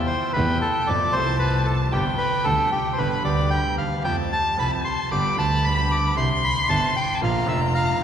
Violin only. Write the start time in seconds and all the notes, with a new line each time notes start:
Already playing: G5
0.36 G5
0.89 A5
1.92 G5
3.00 B5
4.04 A5
5.10 B5
6.16 C6
7.15 A5
7.21 A#5